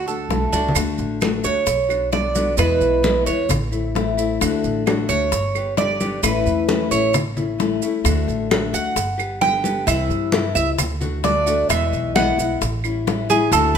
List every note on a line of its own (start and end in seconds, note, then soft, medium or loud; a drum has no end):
0.00 0.27 D2 medium
0.00 0.30 F#4 medium
0.06 0.30 A3 soft
0.06 0.29 D4 soft
0.06 0.29 F#4 soft
0.06 0.52 A4 medium
0.06 high bongo soft
0.06 high conga soft
0.06 maracas soft
0.29 0.50 B1 medium
0.29 0.52 D3 soft
0.29 0.53 A3 soft
0.29 0.53 D4 soft
0.29 0.53 F#4 soft
0.29 high bongo medium
0.29 low bongo medium
0.29 high conga medium
0.29 maracas soft
0.52 0.73 C#2 medium
0.52 0.75 A3 soft
0.52 0.75 D4 medium
0.52 0.76 D4 medium
0.52 0.75 F#4 medium
0.52 high bongo soft
0.52 high conga medium
0.52 maracas medium
0.68 low conga medium
0.75 0.97 D2 loud
0.75 1.20 D3 medium
0.75 1.21 A3 medium
0.75 1.21 D4 medium
0.75 1.21 F#4 medium
0.75 high bongo medium
0.75 high conga soft
0.75 claves medium
0.75 maracas medium
0.98 1.42 A1 medium
0.98 high bongo soft
0.98 high conga soft
0.98 maracas soft
1.21 1.44 D3 medium
1.21 1.44 A3 medium
1.21 1.42 D4 medium
1.21 1.42 F#4 medium
1.21 high bongo medium
1.21 high conga loud
1.21 claves medium
1.21 maracas soft
1.43 1.66 D2 medium
1.43 1.65 A3 soft
1.43 1.65 D4 soft
1.43 1.65 F#4 medium
1.43 2.09 C#5 medium
1.43 high bongo soft
1.43 high conga soft
1.43 maracas medium
1.65 2.54 B1 medium
1.65 muted nylon-string guitar stroke medium
1.65 high bongo medium
1.65 high conga soft
1.65 maracas medium
1.89 2.12 B3 soft
1.89 2.12 D4 soft
1.89 2.11 F#4 soft
1.89 high bongo soft
1.89 high conga soft
1.89 claves medium
1.89 maracas soft
2.12 2.34 D3 soft
2.12 2.34 B3 soft
2.12 2.34 D4 medium
2.12 2.34 F#4 medium
2.12 2.55 D5 medium
2.12 high bongo medium
2.12 low bongo medium
2.12 high conga medium
2.12 maracas soft
2.35 2.57 D3 soft
2.35 2.57 B3 medium
2.35 2.57 D4 medium
2.35 2.57 F#4 medium
2.35 high conga medium
2.35 maracas medium
2.57 2.80 E2 loud
2.57 3.01 B2 medium
2.57 3.02 E3 medium
2.57 3.02 G#3 medium
2.57 3.02 B3 medium
2.57 3.03 E4 medium
2.57 3.23 B4 medium
2.57 high bongo medium
2.57 claves medium
2.57 maracas medium
2.81 3.24 B1 medium
2.81 high bongo soft
2.81 high conga soft
2.81 maracas soft
3.02 3.25 B2 medium
3.02 3.25 E3 medium
3.02 3.25 G#3 medium
3.02 3.26 B3 medium
3.02 3.25 E4 medium
3.02 high bongo medium
3.02 high conga loud
3.02 maracas soft
3.26 3.48 E2 medium
3.26 3.49 G#3 soft
3.26 3.49 B3 soft
3.26 3.49 E4 soft
3.26 3.49 C#5 medium
3.26 high bongo soft
3.26 high conga soft
3.26 maracas medium
3.49 4.37 A1 loud
3.49 muted nylon-string guitar stroke medium
3.49 high bongo medium
3.49 high conga soft
3.49 low conga medium
3.49 claves medium
3.49 maracas medium
3.72 3.94 A3 soft
3.72 3.94 C4 soft
3.72 3.94 E4 soft
3.72 high conga soft
3.72 maracas soft
3.95 4.17 E3 medium
3.95 4.18 A3 medium
3.95 4.17 C4 soft
3.95 4.16 E4 medium
3.95 high bongo medium
3.95 low bongo medium
3.95 high conga medium
3.95 maracas soft
4.17 4.40 A3 medium
4.17 4.40 C4 medium
4.17 4.40 E4 medium
4.17 high bongo soft
4.17 maracas medium
4.40 4.63 D2 loud
4.40 4.85 D3 medium
4.40 4.85 A3 medium
4.40 4.85 D4 medium
4.40 4.86 F#4 medium
4.40 high bongo medium
4.40 high conga soft
4.40 claves medium
4.40 maracas medium
4.64 5.07 A1 medium
4.64 high bongo soft
4.64 high conga soft
4.64 maracas soft
4.86 5.08 D3 medium
4.86 5.08 A3 medium
4.86 5.08 D4 medium
4.86 5.08 F#4 medium
4.86 high bongo medium
4.86 high conga medium
4.86 claves medium
4.86 maracas soft
5.09 5.31 D2 medium
5.09 5.32 A3 soft
5.09 5.31 D4 soft
5.09 5.31 F#4 soft
5.09 5.73 C#5 medium
5.09 high bongo soft
5.09 high conga soft
5.09 maracas medium
5.32 6.19 G1 medium
5.32 muted nylon-string guitar stroke medium
5.32 high bongo medium
5.32 high conga soft
5.32 maracas medium
5.55 5.78 G3 soft
5.55 5.78 B3 soft
5.55 5.77 G4 soft
5.55 high bongo soft
5.55 high conga soft
5.55 claves medium
5.55 maracas soft
5.77 6.00 D3 soft
5.77 6.00 G3 medium
5.77 6.00 B3 soft
5.77 5.99 G4 medium
5.77 6.20 D5 loud
5.77 high bongo medium
5.77 low bongo medium
5.77 high conga medium
5.77 maracas soft
6.00 6.22 D3 medium
6.00 6.22 G3 medium
6.00 6.23 B3 medium
6.00 6.22 G4 medium
6.00 high conga medium
6.00 maracas medium
6.23 6.45 A1 loud
6.23 6.68 E3 medium
6.23 6.68 A3 medium
6.23 6.68 C#4 medium
6.23 6.68 E4 medium
6.23 6.87 B4 medium
6.23 high bongo medium
6.23 high conga soft
6.23 claves medium
6.23 maracas medium
6.46 6.89 E2 medium
6.46 high bongo soft
6.46 high conga soft
6.46 maracas soft
6.68 6.91 E3 medium
6.68 6.91 A3 medium
6.68 6.91 C#4 medium
6.68 6.90 E4 medium
6.68 high bongo medium
6.68 high conga loud
6.68 maracas soft
6.91 7.78 A1 medium
6.91 7.13 A3 soft
6.91 7.14 C#4 soft
6.91 7.13 E4 soft
6.91 7.13 C#5 medium
6.91 high bongo soft
6.91 high conga soft
6.91 maracas medium
7.14 muted nylon-string guitar stroke medium
7.14 high bongo medium
7.14 high conga soft
7.14 low conga medium
7.14 claves medium
7.14 maracas medium
7.36 7.58 A3 soft
7.36 7.59 C#4 soft
7.36 7.58 E4 soft
7.36 high conga soft
7.36 low conga medium
7.36 maracas soft
7.58 7.81 E3 medium
7.58 7.81 A3 medium
7.58 7.82 C#4 medium
7.58 7.81 E4 medium
7.58 high bongo medium
7.58 low bongo medium
7.58 high conga medium
7.58 maracas soft
7.82 8.03 A3 medium
7.82 8.05 C#4 soft
7.82 8.04 E4 medium
7.82 high bongo soft
7.82 maracas medium
8.04 8.27 D2 loud
8.04 8.49 D3 medium
8.04 8.49 A3 medium
8.04 8.50 D4 medium
8.04 8.50 F#4 medium
8.04 high bongo medium
8.04 high conga soft
8.04 claves medium
8.04 maracas medium
8.28 8.71 A1 medium
8.28 high bongo soft
8.28 high conga soft
8.28 maracas soft
8.50 8.72 D3 medium
8.50 8.73 A3 medium
8.50 8.73 D4 medium
8.50 8.72 F#4 medium
8.50 high bongo medium
8.50 high conga loud
8.50 claves medium
8.50 maracas soft
8.73 8.95 D2 medium
8.73 8.96 A3 soft
8.73 8.96 D4 soft
8.73 8.95 F#4 medium
8.73 9.38 F#5 medium
8.73 high bongo soft
8.73 high conga soft
8.73 maracas medium
8.96 9.83 G1 medium
8.96 muted nylon-string guitar stroke medium
8.96 high bongo medium
8.96 high conga soft
8.96 maracas medium
9.18 9.41 G3 soft
9.18 9.41 B3 soft
9.18 9.40 G4 soft
9.18 high bongo soft
9.18 high conga soft
9.18 claves medium
9.18 maracas soft
9.41 9.64 D3 medium
9.41 9.64 G3 soft
9.41 9.63 B3 medium
9.41 9.62 G4 medium
9.41 9.84 G5 loud
9.41 high bongo medium
9.41 low bongo medium
9.41 high conga medium
9.41 maracas soft
9.64 9.87 D3 medium
9.64 9.86 G3 medium
9.64 9.86 B3 medium
9.64 9.86 G4 medium
9.64 high conga medium
9.64 maracas medium
9.86 10.09 C2 loud
9.86 10.31 C3 medium
9.86 10.32 E3 medium
9.86 10.32 G3 medium
9.86 10.32 C4 medium
9.86 10.33 E4 medium
9.86 10.52 E5 medium
9.86 high bongo medium
9.86 high conga soft
9.86 claves medium
9.86 maracas medium
10.09 10.53 G2 medium
10.09 high bongo soft
10.09 high conga soft
10.09 maracas soft
10.32 10.55 C3 medium
10.32 10.55 E3 medium
10.32 10.55 G3 medium
10.32 10.55 C4 medium
10.32 10.54 E4 medium
10.32 high bongo medium
10.32 high conga loud
10.32 maracas soft
10.55 10.77 C#2 medium
10.55 10.78 G3 soft
10.55 10.78 C4 soft
10.55 10.77 E4 medium
10.55 10.69 E5 medium
10.55 high bongo soft
10.55 high conga soft
10.55 maracas medium
10.78 11.66 D2 medium
10.78 muted nylon-string guitar stroke medium
10.78 high bongo medium
10.78 high conga soft
10.78 low conga medium
10.78 claves medium
10.78 maracas medium
11.01 11.23 A3 soft
11.01 11.23 D4 soft
11.01 11.23 F#4 medium
11.01 high conga soft
11.01 low conga medium
11.01 maracas soft
11.23 11.46 D3 medium
11.23 11.46 A3 soft
11.23 11.46 D4 medium
11.23 11.45 F#4 medium
11.23 11.67 D5 medium
11.23 high bongo medium
11.23 low bongo medium
11.23 high conga medium
11.23 maracas soft
11.46 11.69 A3 medium
11.46 11.69 D4 medium
11.46 11.68 F#4 medium
11.46 high bongo soft
11.46 maracas medium
11.69 11.91 E2 loud
11.69 12.14 B2 medium
11.69 12.14 E3 medium
11.69 12.15 G#3 medium
11.69 12.15 B3 medium
11.69 12.15 E4 medium
11.69 12.12 E5 medium
11.69 high bongo medium
11.69 high conga soft
11.69 claves medium
11.69 maracas medium
11.93 12.36 B1 medium
11.93 high bongo soft
11.93 high conga soft
11.93 maracas soft
12.15 12.37 B2 medium
12.15 12.38 E3 medium
12.15 12.38 G#3 medium
12.15 12.38 B3 medium
12.15 12.38 E4 medium
12.15 12.58 F#5 medium
12.15 high bongo medium
12.15 high conga loud
12.15 claves medium
12.15 maracas soft
12.38 12.60 B1 medium
12.38 12.61 G#3 soft
12.38 12.61 B3 soft
12.38 12.61 E4 medium
12.38 high bongo soft
12.38 high conga soft
12.38 maracas medium
12.61 13.48 A1 medium
12.61 muted nylon-string guitar stroke medium
12.61 high bongo medium
12.61 high conga soft
12.61 maracas medium
12.84 13.06 G3 soft
12.84 13.06 C#4 soft
12.84 13.06 E4 soft
12.84 high bongo soft
12.84 high conga soft
12.84 claves medium
12.84 maracas soft
13.07 13.29 E3 soft
13.07 13.29 G3 medium
13.07 13.29 C#4 medium
13.07 13.29 E4 medium
13.07 high bongo medium
13.07 low bongo medium
13.07 high conga medium
13.07 maracas soft
13.30 13.53 G3 medium
13.30 13.52 C#4 medium
13.30 13.52 E4 medium
13.30 13.52 G#4 medium
13.30 high conga medium
13.30 maracas medium
13.52 13.74 D2 loud
13.52 13.78 D3 medium
13.52 13.78 A3 medium
13.52 13.78 D4 medium
13.52 13.78 F#4 medium
13.52 13.75 A4 medium
13.52 high bongo medium
13.52 high conga soft
13.52 claves medium
13.52 maracas medium
13.74 13.78 A1 medium